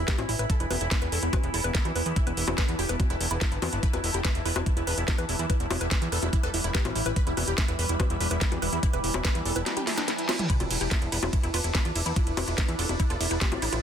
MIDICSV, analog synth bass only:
0, 0, Header, 1, 2, 480
1, 0, Start_track
1, 0, Key_signature, 1, "minor"
1, 0, Tempo, 416667
1, 573, Time_signature, 4, 2, 24, 8
1, 15921, End_track
2, 0, Start_track
2, 0, Title_t, "Analog synth bass"
2, 0, Program_c, 0, 38
2, 212, Note_on_c, 0, 33, 90
2, 288, Note_off_c, 0, 33, 0
2, 332, Note_on_c, 0, 33, 101
2, 408, Note_off_c, 0, 33, 0
2, 452, Note_on_c, 0, 33, 96
2, 528, Note_off_c, 0, 33, 0
2, 692, Note_on_c, 0, 28, 91
2, 768, Note_off_c, 0, 28, 0
2, 812, Note_on_c, 0, 28, 104
2, 888, Note_off_c, 0, 28, 0
2, 932, Note_on_c, 0, 28, 94
2, 1008, Note_off_c, 0, 28, 0
2, 1173, Note_on_c, 0, 28, 83
2, 1248, Note_off_c, 0, 28, 0
2, 1293, Note_on_c, 0, 28, 99
2, 1368, Note_off_c, 0, 28, 0
2, 1413, Note_on_c, 0, 28, 93
2, 1488, Note_off_c, 0, 28, 0
2, 1652, Note_on_c, 0, 28, 90
2, 1728, Note_off_c, 0, 28, 0
2, 1772, Note_on_c, 0, 28, 98
2, 1848, Note_off_c, 0, 28, 0
2, 1892, Note_on_c, 0, 28, 94
2, 1968, Note_off_c, 0, 28, 0
2, 2132, Note_on_c, 0, 40, 93
2, 2208, Note_off_c, 0, 40, 0
2, 2252, Note_on_c, 0, 28, 98
2, 2328, Note_off_c, 0, 28, 0
2, 2372, Note_on_c, 0, 40, 96
2, 2448, Note_off_c, 0, 40, 0
2, 2612, Note_on_c, 0, 28, 87
2, 2688, Note_off_c, 0, 28, 0
2, 2733, Note_on_c, 0, 28, 104
2, 2808, Note_off_c, 0, 28, 0
2, 2852, Note_on_c, 0, 28, 95
2, 2928, Note_off_c, 0, 28, 0
2, 3092, Note_on_c, 0, 40, 88
2, 3168, Note_off_c, 0, 40, 0
2, 3212, Note_on_c, 0, 28, 98
2, 3288, Note_off_c, 0, 28, 0
2, 3332, Note_on_c, 0, 28, 96
2, 3408, Note_off_c, 0, 28, 0
2, 3572, Note_on_c, 0, 28, 88
2, 3648, Note_off_c, 0, 28, 0
2, 3692, Note_on_c, 0, 28, 102
2, 3768, Note_off_c, 0, 28, 0
2, 3813, Note_on_c, 0, 28, 93
2, 3888, Note_off_c, 0, 28, 0
2, 4053, Note_on_c, 0, 31, 88
2, 4129, Note_off_c, 0, 31, 0
2, 4172, Note_on_c, 0, 40, 100
2, 4248, Note_off_c, 0, 40, 0
2, 4292, Note_on_c, 0, 31, 95
2, 4368, Note_off_c, 0, 31, 0
2, 4532, Note_on_c, 0, 28, 88
2, 4608, Note_off_c, 0, 28, 0
2, 4652, Note_on_c, 0, 28, 98
2, 4728, Note_off_c, 0, 28, 0
2, 4772, Note_on_c, 0, 28, 95
2, 4848, Note_off_c, 0, 28, 0
2, 5012, Note_on_c, 0, 28, 87
2, 5088, Note_off_c, 0, 28, 0
2, 5133, Note_on_c, 0, 28, 99
2, 5208, Note_off_c, 0, 28, 0
2, 5252, Note_on_c, 0, 28, 95
2, 5328, Note_off_c, 0, 28, 0
2, 5492, Note_on_c, 0, 28, 88
2, 5568, Note_off_c, 0, 28, 0
2, 5612, Note_on_c, 0, 28, 98
2, 5688, Note_off_c, 0, 28, 0
2, 5732, Note_on_c, 0, 28, 96
2, 5808, Note_off_c, 0, 28, 0
2, 5973, Note_on_c, 0, 40, 91
2, 6048, Note_off_c, 0, 40, 0
2, 6092, Note_on_c, 0, 28, 97
2, 6168, Note_off_c, 0, 28, 0
2, 6212, Note_on_c, 0, 40, 93
2, 6288, Note_off_c, 0, 40, 0
2, 6452, Note_on_c, 0, 28, 90
2, 6528, Note_off_c, 0, 28, 0
2, 6572, Note_on_c, 0, 28, 102
2, 6648, Note_off_c, 0, 28, 0
2, 6692, Note_on_c, 0, 28, 92
2, 6768, Note_off_c, 0, 28, 0
2, 6932, Note_on_c, 0, 40, 88
2, 7008, Note_off_c, 0, 40, 0
2, 7052, Note_on_c, 0, 28, 98
2, 7128, Note_off_c, 0, 28, 0
2, 7172, Note_on_c, 0, 28, 92
2, 7248, Note_off_c, 0, 28, 0
2, 7412, Note_on_c, 0, 28, 88
2, 7488, Note_off_c, 0, 28, 0
2, 7532, Note_on_c, 0, 28, 100
2, 7608, Note_off_c, 0, 28, 0
2, 7652, Note_on_c, 0, 28, 95
2, 7728, Note_off_c, 0, 28, 0
2, 7892, Note_on_c, 0, 33, 87
2, 7968, Note_off_c, 0, 33, 0
2, 8012, Note_on_c, 0, 33, 97
2, 8088, Note_off_c, 0, 33, 0
2, 8132, Note_on_c, 0, 33, 94
2, 8208, Note_off_c, 0, 33, 0
2, 8372, Note_on_c, 0, 28, 92
2, 8448, Note_off_c, 0, 28, 0
2, 8492, Note_on_c, 0, 28, 104
2, 8568, Note_off_c, 0, 28, 0
2, 8612, Note_on_c, 0, 28, 92
2, 8688, Note_off_c, 0, 28, 0
2, 8852, Note_on_c, 0, 28, 87
2, 8928, Note_off_c, 0, 28, 0
2, 8972, Note_on_c, 0, 28, 98
2, 9048, Note_off_c, 0, 28, 0
2, 9092, Note_on_c, 0, 28, 97
2, 9168, Note_off_c, 0, 28, 0
2, 9332, Note_on_c, 0, 28, 86
2, 9408, Note_off_c, 0, 28, 0
2, 9452, Note_on_c, 0, 28, 100
2, 9528, Note_off_c, 0, 28, 0
2, 9572, Note_on_c, 0, 28, 96
2, 9648, Note_off_c, 0, 28, 0
2, 9812, Note_on_c, 0, 40, 90
2, 9888, Note_off_c, 0, 40, 0
2, 9932, Note_on_c, 0, 28, 102
2, 10008, Note_off_c, 0, 28, 0
2, 10052, Note_on_c, 0, 40, 98
2, 10128, Note_off_c, 0, 40, 0
2, 10292, Note_on_c, 0, 28, 90
2, 10368, Note_off_c, 0, 28, 0
2, 10412, Note_on_c, 0, 28, 102
2, 10488, Note_off_c, 0, 28, 0
2, 10532, Note_on_c, 0, 28, 93
2, 10608, Note_off_c, 0, 28, 0
2, 10772, Note_on_c, 0, 40, 85
2, 10848, Note_off_c, 0, 40, 0
2, 10892, Note_on_c, 0, 28, 99
2, 10968, Note_off_c, 0, 28, 0
2, 11013, Note_on_c, 0, 28, 95
2, 11088, Note_off_c, 0, 28, 0
2, 12212, Note_on_c, 0, 28, 90
2, 12288, Note_off_c, 0, 28, 0
2, 12332, Note_on_c, 0, 28, 103
2, 12408, Note_off_c, 0, 28, 0
2, 12453, Note_on_c, 0, 28, 93
2, 12528, Note_off_c, 0, 28, 0
2, 12693, Note_on_c, 0, 28, 88
2, 12769, Note_off_c, 0, 28, 0
2, 12813, Note_on_c, 0, 28, 98
2, 12888, Note_off_c, 0, 28, 0
2, 12933, Note_on_c, 0, 28, 92
2, 13008, Note_off_c, 0, 28, 0
2, 13173, Note_on_c, 0, 28, 89
2, 13249, Note_off_c, 0, 28, 0
2, 13293, Note_on_c, 0, 28, 101
2, 13369, Note_off_c, 0, 28, 0
2, 13413, Note_on_c, 0, 28, 93
2, 13489, Note_off_c, 0, 28, 0
2, 13653, Note_on_c, 0, 40, 89
2, 13729, Note_off_c, 0, 40, 0
2, 13773, Note_on_c, 0, 28, 100
2, 13849, Note_off_c, 0, 28, 0
2, 13893, Note_on_c, 0, 40, 95
2, 13969, Note_off_c, 0, 40, 0
2, 14133, Note_on_c, 0, 28, 88
2, 14209, Note_off_c, 0, 28, 0
2, 14253, Note_on_c, 0, 28, 100
2, 14329, Note_off_c, 0, 28, 0
2, 14373, Note_on_c, 0, 28, 95
2, 14449, Note_off_c, 0, 28, 0
2, 14613, Note_on_c, 0, 40, 85
2, 14689, Note_off_c, 0, 40, 0
2, 14733, Note_on_c, 0, 28, 101
2, 14809, Note_off_c, 0, 28, 0
2, 14853, Note_on_c, 0, 28, 93
2, 14929, Note_off_c, 0, 28, 0
2, 15093, Note_on_c, 0, 28, 88
2, 15168, Note_off_c, 0, 28, 0
2, 15213, Note_on_c, 0, 28, 99
2, 15288, Note_off_c, 0, 28, 0
2, 15333, Note_on_c, 0, 28, 95
2, 15408, Note_off_c, 0, 28, 0
2, 15573, Note_on_c, 0, 33, 89
2, 15649, Note_off_c, 0, 33, 0
2, 15693, Note_on_c, 0, 33, 100
2, 15768, Note_off_c, 0, 33, 0
2, 15812, Note_on_c, 0, 33, 94
2, 15888, Note_off_c, 0, 33, 0
2, 15921, End_track
0, 0, End_of_file